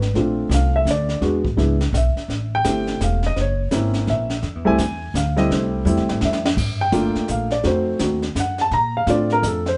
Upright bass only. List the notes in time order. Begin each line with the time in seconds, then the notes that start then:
Already playing: G#1
0.14 A#1
0.49 C2
0.85 D2
1.21 E2
1.57 C#2
1.93 B1
2.16 muted upright bass stroke
2.28 A1
2.65 G1
3.01 E1
3.37 F#1
3.73 G#1
4.08 A#1
4.43 F2
4.55 E2
4.67 C2
4.78 E2
5.14 D2
5.50 C2
5.85 E2
5.97 C2
6.10 A1
6.22 F2
6.57 G2
6.92 G1
7.15 muted upright bass stroke
7.29 A#1
7.64 F2
8.00 D#2
8.35 F#2
8.71 A#2
9.07 A2
9.43 F2